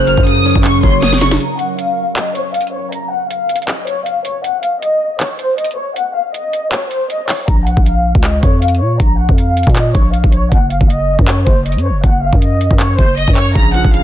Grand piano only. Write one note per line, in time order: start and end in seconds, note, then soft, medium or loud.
0.00 0.26 C#3 loud
0.00 0.07 F#3 medium
0.00 0.46 C#4 loud
0.00 0.46 A#4 medium
0.07 0.82 F#3 medium
0.26 0.63 C#3 medium
0.46 1.40 C#4 loud
0.64 1.20 C#3 medium
0.83 1.40 F#3 medium
1.02 1.40 C#5 medium
1.21 1.40 C#3 medium
13.55 13.92 C#3 medium
13.74 14.03 F3 medium
13.94 14.03 C#3 medium